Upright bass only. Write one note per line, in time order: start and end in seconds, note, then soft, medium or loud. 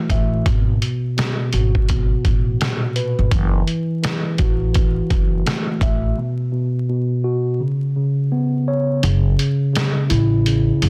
0.10 0.39 A1 loud
0.46 0.75 G#1 loud
1.53 2.12 G#1 medium
2.25 2.54 A1 medium
3.19 3.30 G1 medium
3.32 3.61 F#1 loud
4.39 4.98 A1 medium
5.11 5.40 F#1 medium
5.81 6.11 A1 medium
9.04 9.33 F#1 loud
10.11 10.70 A1 medium
10.82 10.89 F#1 loud